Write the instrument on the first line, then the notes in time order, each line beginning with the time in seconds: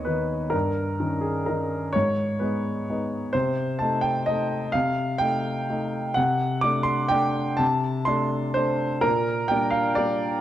grand piano
Already playing: D#2 D#3 B3 D#4 C#5 D#5
0.05 D#3 B3 D#4 B4
0.50 G2 A#4
1.00 D#3 C#4 D#4
1.21 G#4
1.46 D#3 C#4 D#4 A#4
1.93 G#2 C#5
2.39 G#3 B3 D#4 B4
2.90 G#3 B3 D#4
3.33 C3 C5
3.79 A3 D#4 A5
4.01 G5
4.26 A3 D#4 D#5
4.72 C3 F5
5.18 A3 D#4 G5
5.70 A3 D#4
6.14 C3 F#5
6.61 A3 D4 D6
6.83 C6
7.08 A3 D4 G5
7.57 C3 A5
8.05 A3 D4 C6
8.54 A3 D4 C5
9.01 A#2 A#4
9.48 G3 A#3 D4 G5
9.71 F5
9.95 G3 A#3 D4 D5